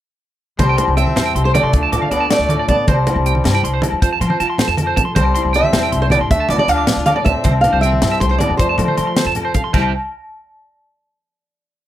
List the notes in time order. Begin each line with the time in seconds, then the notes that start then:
0.59 C2 C3 G3 C4 C5, muted nylon-string guitar stroke, kick, closed hi-hat, high conga, low agogo
0.63 G4
0.69 G5
0.78 E4 C6, closed hi-hat, low conga, low agogo
0.88 C2
0.96 G3 C4 E5 G5, closed hi-hat
1.07 high conga, low conga
1.16 E2 E4 C5, snare, closed hi-hat, low conga, low agogo
1.26 G5, low conga
1.35 C2 G2 G4 C6, closed hi-hat
1.44 A3 C5, low conga
1.54 A3 E4 D5 G5, closed hi-hat, high conga, low conga, low agogo
1.63 C2 C6
1.73 D2 D3 F3 D4 F4 A4, kick, closed hi-hat
1.83 A5
1.92 D2 F4 D6, closed hi-hat, low conga, low agogo
2.02 F5, high conga, low conga
2.11 D2 F3 B3 D4 D5, muted clean electric guitar stroke, closed hi-hat, low agogo
2.21 A5
2.29 A3 F4 D5, snare, closed hi-hat, low conga
2.39 D2, low conga
2.49 A2 A4 D6, closed hi-hat, high conga, low conga, low agogo
2.59 D5
2.68 D2 B3 F4 D5 A5, kick, closed hi-hat, low conga
2.87 C2 C3 G3 C4 C5, kick, closed hi-hat, high conga, low agogo
3.07 E4, closed hi-hat, low conga, low agogo
3.16 C2
3.26 G3 C4 G5, closed hi-hat
3.35 high conga, low conga
3.44 G2 D4, snare, closed hi-hat, low conga, low agogo
3.53 E4 G5, low conga
3.63 C2 G2 C6, closed hi-hat
3.72 C5, low conga
3.82 E4, closed hi-hat, high conga, low conga, low agogo
3.92 E2
4.02 F2 F3 F4 C5, kick, closed hi-hat
4.13 A5
4.21 F3 C6, closed hi-hat, low conga, low agogo
4.30 C5, high conga, low conga
4.40 F3 F4 A5, closed hi-hat, low agogo
4.50 C6
4.58 A4 C5, snare, closed hi-hat, low conga
4.68 F2 A5, low conga
4.77 C3 A4, closed hi-hat, high conga, low conga, low agogo
4.87 C5
4.96 F3 A4 A5, kick, closed hi-hat, low conga
5.05 C6
5.15 C2 C3 G3 C4 C5, kick, closed hi-hat, high conga, low agogo
5.25 muted clean electric guitar stroke
5.34 E4 C6, closed hi-hat, low agogo
5.45 C2
5.53 G3 C4 E5 G5, closed hi-hat
5.63 high conga, low conga
5.73 E2 E4 C5, snare, closed hi-hat, low conga, low agogo
5.82 G5, low conga
5.92 C2 G2 G4 C6, closed hi-hat
6.01 A3 C5, low conga
6.10 B3 D5 G5, closed hi-hat, high conga, low conga, low agogo
6.15 E4
6.21 A1 C6
6.30 D2 D3 A3 D4 E5, kick, closed hi-hat
6.40 A5
6.49 D2 B3 F4 D5 D6, closed hi-hat, low conga, low agogo
6.58 B3 D5, high conga, low conga
6.67 D2 F3 D4 F5, muted clean electric guitar stroke, closed hi-hat, low agogo
6.78 D6
6.87 D4, snare, closed hi-hat, low conga
6.96 D2 F4, low conga
7.06 A2 D4 A4 F5 D6, closed hi-hat, high conga, low conga, low agogo
7.16 B3 D5
7.24 D2 C4 F4 E5 A5, kick, closed hi-hat, low conga
7.44 C2 C3 C4 C5, kick, closed hi-hat, high conga, low conga, low agogo
7.61 D4 F5, closed hi-hat, low conga, low agogo
7.66 E4
7.73 C2 C5
7.81 G3 C4 E5 G5, closed hi-hat
7.92 high conga
8.02 G2 E4, snare, closed hi-hat, low conga, low agogo
8.11 E5
8.20 C2 A3 G4 C5 C6, kick, closed hi-hat
8.29 A3 C5
8.38 B3 E4 D5, closed hi-hat, high conga, low conga, low agogo
8.49 E2, low conga
8.57 F2 F3 A3 F4 C5, kick, closed hi-hat
8.69 A5, low conga
8.78 F3 A4, muted clean electric guitar stroke, closed hi-hat, low conga, low agogo
8.88 C5, high conga, low conga
8.97 F3 F4 C6, muted nylon-string guitar stroke, closed hi-hat, high conga, low agogo
9.07 C6
9.16 A4 C5, snare, closed hi-hat, high conga
9.25 F2 A5
9.35 C3 A4, closed hi-hat, low conga, low agogo
9.45 C5
9.54 F3 A4 F5, kick, closed hi-hat, low conga
9.64 C6
9.73 C2 C3 G3 C4 E4 C5 E5 G5, kick, crash, high conga, low agogo
9.77 G4